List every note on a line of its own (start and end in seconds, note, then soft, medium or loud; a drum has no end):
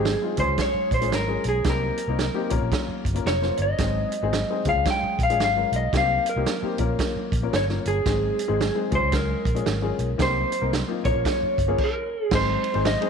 0.00 0.14 G#1 medium
0.00 0.42 G#4 medium
0.05 snare loud
0.05 closed hi-hat medium
0.22 0.37 G#3 medium
0.22 0.38 C4 medium
0.22 0.39 D#4 medium
0.22 0.37 F4 medium
0.37 0.46 C#2 medium
0.37 0.92 G#3 medium
0.37 0.92 C#4 medium
0.37 0.92 F4 medium
0.37 0.92 G#4 medium
0.37 0.60 C5 medium
0.37 kick medium
0.37 closed hi-hat medium
0.48 0.55 C#2 medium
0.58 kick medium
0.58 snare loud
0.58 closed hi-hat medium
0.62 0.94 C#5 medium
0.74 muted fingered electric bass stroke soft
0.91 1.12 A#1 medium
0.91 1.14 C5 medium
0.91 kick medium
0.91 closed hi-hat medium
1.01 1.16 G#3 medium
1.01 1.17 C#4 medium
1.01 1.17 F4 medium
1.01 1.17 G#4 medium
1.01 closed hi-hat medium
1.12 1.36 G#1 loud
1.12 1.44 A#4 medium
1.12 snare medium
1.12 closed hi-hat medium
1.27 1.54 G#3 medium
1.27 1.54 C#4 medium
1.27 1.54 F4 medium
1.27 1.54 G#4 medium
1.44 1.60 B1 medium
1.44 closed hi-hat medium
1.49 1.68 G#4 medium
1.64 1.89 C2 medium
1.64 1.97 A#3 medium
1.64 1.97 C4 medium
1.64 1.97 D#4 medium
1.64 1.97 G4 medium
1.64 kick loud
1.64 snare medium
1.64 closed hi-hat medium
1.70 2.50 A#4 medium
1.97 closed hi-hat medium
2.08 2.27 C2 medium
2.08 2.23 A#3 medium
2.08 2.23 C4 medium
2.08 2.24 D#4 medium
2.08 2.24 A#4 medium
2.19 snare medium
2.19 closed hi-hat medium
2.34 2.48 A#3 medium
2.34 2.51 C4 medium
2.34 2.52 D#4 medium
2.34 2.52 G4 medium
2.50 2.59 A#1 medium
2.50 3.04 A#3 medium
2.50 3.04 C#4 medium
2.50 3.05 F4 medium
2.50 3.05 A#4 medium
2.50 kick medium
2.50 closed hi-hat medium
2.62 2.69 A#1 medium
2.72 kick medium
2.72 snare loud
2.72 closed hi-hat medium
2.89 muted fingered electric bass stroke soft
3.05 3.20 G1 medium
3.05 kick medium
3.05 closed hi-hat medium
3.14 3.30 A#3 medium
3.14 3.30 C#4 medium
3.14 3.30 F4 medium
3.14 3.30 A#4 medium
3.14 closed hi-hat medium
3.25 3.49 F1 medium
3.25 3.57 C#5 medium
3.25 snare medium
3.25 closed hi-hat medium
3.42 3.68 A#3 medium
3.42 3.68 C#4 medium
3.42 3.68 F4 medium
3.42 3.68 C5 medium
3.42 snare soft
3.57 3.73 G1 medium
3.57 closed hi-hat medium
3.62 4.68 D#5 medium
3.78 4.03 G#1 medium
3.78 4.10 G#3 medium
3.78 4.10 C4 medium
3.78 4.10 D#4 medium
3.78 4.10 G#4 medium
3.78 kick loud
3.78 snare medium
3.78 closed hi-hat medium
4.12 closed hi-hat medium
4.22 4.42 G#1 medium
4.22 4.37 G#3 medium
4.22 4.37 C4 medium
4.22 4.37 D#4 medium
4.22 4.38 G#4 medium
4.33 snare loud
4.33 closed hi-hat medium
4.50 4.65 G#3 medium
4.50 4.66 C4 medium
4.50 4.66 D#4 medium
4.50 4.65 G#4 medium
4.65 4.73 C#2 medium
4.65 5.19 G#3 medium
4.65 5.19 C#4 medium
4.65 5.19 F4 medium
4.65 5.19 G#4 medium
4.65 kick medium
4.65 closed hi-hat medium
4.69 4.86 F5 medium
4.76 4.83 C#2 medium
4.85 kick medium
4.85 snare loud
4.85 closed hi-hat medium
4.90 5.22 G5 loud
5.03 muted fingered electric bass stroke soft
5.19 5.39 A#1 medium
5.19 kick medium
5.19 closed hi-hat medium
5.23 5.42 F5 medium
5.30 5.44 G#3 medium
5.30 5.44 C#4 medium
5.30 5.44 F4 medium
5.30 5.44 G#4 medium
5.30 closed hi-hat medium
5.39 5.63 G#1 medium
5.39 snare loud
5.39 closed hi-hat medium
5.44 5.75 F5 medium
5.56 5.81 G#3 medium
5.56 5.82 C#4 medium
5.56 5.82 F4 medium
5.56 5.82 A#4 medium
5.72 5.87 B1 medium
5.72 closed hi-hat medium
5.76 5.95 D#5 medium
5.93 6.17 C2 loud
5.93 6.24 A#3 medium
5.93 6.24 C4 medium
5.93 6.25 D#4 medium
5.93 6.25 G4 medium
5.93 kick medium
5.93 snare medium
5.93 closed hi-hat medium
5.97 6.26 F5 loud
6.26 7.50 A#4 medium
6.26 closed hi-hat medium
6.36 6.43 C2 medium
6.36 6.51 A#3 medium
6.36 6.51 C4 medium
6.36 6.51 D#4 medium
6.36 6.51 G4 medium
6.46 snare medium
6.46 closed hi-hat medium
6.62 6.78 A#3 medium
6.62 6.79 C4 medium
6.62 6.79 D#4 medium
6.62 6.79 G4 medium
6.62 muted fingered electric bass stroke soft
6.78 6.93 A#1 medium
6.78 7.32 A#3 medium
6.78 7.32 C#4 medium
6.78 7.33 F4 medium
6.78 7.33 A#4 medium
6.78 kick medium
6.78 closed hi-hat medium
6.99 kick medium
6.99 snare loud
6.99 closed hi-hat medium
7.16 muted fingered electric bass stroke soft
7.32 7.47 A#1 medium
7.32 kick medium
7.32 closed hi-hat medium
7.42 7.57 A#3 medium
7.42 7.57 C#4 medium
7.42 7.57 F4 medium
7.42 7.57 A#4 medium
7.53 7.77 G1 medium
7.53 7.64 C#5 medium
7.53 snare loud
7.53 closed hi-hat medium
7.69 7.95 A#3 medium
7.69 7.95 C#4 medium
7.69 7.95 F4 medium
7.69 7.95 A#4 medium
7.69 snare soft
7.85 8.00 G1 medium
7.85 8.89 G#4 medium
7.85 closed hi-hat medium
8.05 8.30 G#1 medium
8.05 8.37 G#3 medium
8.05 8.37 C4 medium
8.05 8.37 D#4 medium
8.05 8.37 G#4 medium
8.05 kick loud
8.05 snare medium
8.05 closed hi-hat medium
8.39 closed hi-hat medium
8.48 8.68 G#1 medium
8.48 8.63 G#3 medium
8.48 8.63 C4 medium
8.48 8.63 D#4 medium
8.48 8.63 G#4 medium
8.61 snare loud
8.61 closed hi-hat medium
8.75 8.90 G#3 medium
8.75 8.91 C4 medium
8.75 8.92 D#4 medium
8.75 8.90 G#4 medium
8.91 9.00 C#2 medium
8.91 9.45 G#3 medium
8.91 9.45 C#4 medium
8.91 9.45 F4 medium
8.91 9.45 G#4 medium
8.91 9.13 C5 medium
8.91 kick medium
8.91 closed hi-hat medium
9.03 9.34 C#2 medium
9.12 10.16 A#4 medium
9.12 kick medium
9.12 snare loud
9.12 closed hi-hat medium
9.45 9.60 A#1 medium
9.45 kick medium
9.45 closed hi-hat medium
9.55 9.70 G#3 medium
9.55 9.70 C#4 medium
9.55 9.70 F4 medium
9.55 9.70 G#4 medium
9.55 closed hi-hat medium
9.66 9.90 G#1 medium
9.66 snare loud
9.66 closed hi-hat medium
9.82 10.08 G#3 medium
9.82 10.08 C#4 medium
9.82 10.08 F4 medium
9.82 10.08 G#4 medium
9.99 10.13 B1 medium
9.99 closed hi-hat soft
10.18 10.43 C2 loud
10.18 10.49 A#3 medium
10.18 10.50 C4 medium
10.18 10.50 D#4 medium
10.18 10.50 G4 medium
10.18 kick loud
10.18 snare loud
10.18 closed hi-hat medium
10.22 10.70 C5 medium
10.52 closed hi-hat medium
10.61 10.81 C2 medium
10.61 10.76 A#3 medium
10.61 10.76 C4 medium
10.61 10.77 D#4 medium
10.61 10.76 A#4 medium
10.73 snare loud
10.73 closed hi-hat medium
10.88 11.02 A#3 medium
10.88 11.03 C4 medium
10.88 11.05 D#4 medium
10.88 11.03 F4 medium
11.04 11.12 A#1 medium
11.04 11.58 A#3 medium
11.04 11.10 C4 medium
11.04 11.58 F4 medium
11.04 11.58 A#4 medium
11.04 12.08 C#5 medium
11.04 kick medium
11.04 closed hi-hat medium
11.11 11.61 C#4 medium
11.15 11.23 A#1 medium
11.25 kick medium
11.25 snare loud
11.25 closed hi-hat medium
11.43 muted fingered electric bass stroke soft
11.58 11.73 G1 medium
11.58 kick medium
11.58 closed hi-hat medium
11.68 11.78 A#3 medium
11.68 11.78 C#4 medium
11.68 11.79 F4 medium
11.68 11.79 G#4 medium
11.78 kick loud
11.78 crash medium
11.84 12.25 A#4 medium
12.25 12.36 G#4 medium
12.31 12.55 G#1 loud
12.31 12.63 G#3 medium
12.31 12.63 C4 medium
12.31 12.63 D#4 medium
12.31 12.63 G#4 medium
12.31 12.63 C5 medium
12.31 kick loud
12.31 snare loud
12.31 crash loud
12.35 12.83 C5 loud
12.64 ride medium
12.74 12.94 G#1 loud
12.74 12.89 G#3 medium
12.74 12.89 C4 medium
12.74 12.89 D#4 medium
12.74 12.89 G#4 medium
12.74 12.90 C5 medium
12.74 ride soft
12.85 13.10 D#5 loud
12.85 snare loud
12.85 ride medium
13.01 13.10 G#3 medium
13.01 13.10 C4 medium
13.01 13.10 D#4 medium
13.01 13.10 G#4 medium
13.01 13.10 C5 medium
13.01 ride soft